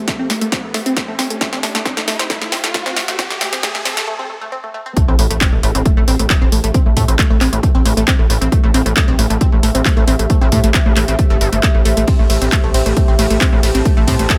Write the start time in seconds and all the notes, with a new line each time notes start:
Already playing: A3 G4 C5 E5, riser
0.07 A3, kick, snare, closed hi-hat
0.19 C4
0.30 A3, snare, open hi-hat
0.41 A3, closed hi-hat
0.52 C4, kick, snare, closed hi-hat
0.64 A3
0.74 A3, snare, open hi-hat
0.86 C4, closed hi-hat
0.97 A3, kick, snare, closed hi-hat
1.08 A3
1.19 C4, snare, open hi-hat
1.30 A3, closed hi-hat
1.41 A3, kick, snare, closed hi-hat
1.53 C4, snare
1.63 A3, snare, open hi-hat
1.75 A3, snare, closed hi-hat
1.85 C4, kick, snare, closed hi-hat
1.97 A3, snare
2.07 A3, snare, open hi-hat
2.19 C4, snare, closed hi-hat
2.30 A3, kick, snare, closed hi-hat
2.41 A3, snare
2.52 C4, snare, open hi-hat
2.64 A3, snare, closed hi-hat
2.74 A3, kick, snare, open hi-hat
2.86 C4, snare
2.96 A3, snare, open hi-hat
3.08 A3, snare, closed hi-hat
3.19 C4, kick, snare, closed hi-hat
3.30 A3, snare
3.41 A3, kick, snare, open hi-hat
3.53 C4, snare, closed hi-hat
3.63 A3, kick, snare, closed hi-hat
3.75 A3, snare
3.85 C4, snare, open hi-hat
3.97 A3, snare, closed hi-hat
4.07 A3
4.19 C4
4.30 A3
4.41 A3
4.52 C4
4.64 A3
4.74 A3
4.86 C4
4.96 A3 G4, kick, closed hi-hat, sub drop
5.08 A1 C4
5.19 A1 A3, open hi-hat
5.30 A1 A3, closed hi-hat
5.35 C5
5.41 C4, kick, clap, closed hi-hat
5.53 B1 A3
5.63 A1 A3, open hi-hat
5.75 A1 C4, closed hi-hat
5.85 A3, kick, closed hi-hat
5.97 A1 A3
6.08 A1 C4, open hi-hat
6.19 A1 A3, closed hi-hat
6.30 A3, kick, clap, open hi-hat
6.42 A1 C4 E5
6.52 A1 A3, open hi-hat
6.64 A1 A3, closed hi-hat
6.74 C4, kick, closed hi-hat
6.86 A1 A3
6.97 A2 A3, kick, open hi-hat
7.08 A1 C4, closed hi-hat
7.19 A3, kick, clap, closed hi-hat
7.30 A1 A3
7.41 A1 C4, clap, open hi-hat
7.53 A1 A3, closed hi-hat
7.63 A3, kick, closed hi-hat
7.75 A1 C4
7.85 A1 A3, open hi-hat
7.97 A1 A3, closed hi-hat
8.07 C4, kick, clap, closed hi-hat
8.19 A1 A3
8.30 A1 A3, open hi-hat
8.41 A1 C4, closed hi-hat
8.52 A3, kick, closed hi-hat
8.64 A1 A3
8.74 A1 C4, open hi-hat
8.86 A1 A3, closed hi-hat
8.96 A3, kick, clap, closed hi-hat
9.08 B1 C4
9.19 A1 A3, open hi-hat
9.30 A1 A3, closed hi-hat
9.41 C4, kick, closed hi-hat
9.52 A1 A3
9.63 A1 A3, open hi-hat
9.75 A1 C4, closed hi-hat
9.85 A3, kick, clap, open hi-hat
9.97 A1 A3
10.07 A1 C4, open hi-hat
10.19 A1 A3, closed hi-hat
10.30 A3, kick, closed hi-hat
10.41 A1 C4
10.52 A2 A3, kick, open hi-hat
10.64 A1 A3, closed hi-hat
10.74 C4, kick, clap, closed hi-hat
10.86 A1 A3
10.96 A1 A3, clap, open hi-hat
11.08 A1 C4, closed hi-hat
11.19 A3, kick, closed hi-hat
11.30 G1 A3
11.41 G1, open hi-hat
11.52 G1 A3, closed hi-hat
11.63 A3, kick, clap, closed hi-hat
11.75 A1 A3
11.85 A1 A3, open hi-hat
11.97 A1 A3, closed hi-hat
12.07 C4, kick, closed hi-hat, ride
12.19 A1 A3
12.30 A1 A3, open hi-hat, ride
12.41 A1 C4, closed hi-hat
12.52 A3, kick, clap, closed hi-hat, ride
12.64 B1 A3
12.74 A1 C4, open hi-hat, ride
12.86 A1 A3, closed hi-hat
12.97 A3, kick, closed hi-hat, ride
13.08 A1 C4
13.19 A1 A3, open hi-hat, ride
13.30 A1 A3, closed hi-hat
13.41 C4, kick, clap, open hi-hat, ride
13.53 A1 A3 A5
13.63 A1 A3, open hi-hat, ride
13.75 A1 C4, closed hi-hat
13.85 A3, kick, closed hi-hat, ride
13.97 A1 A3
14.07 A2 C4, kick, open hi-hat, ride
14.19 A1 A3, closed hi-hat
14.30 A3, kick, clap, closed hi-hat, ride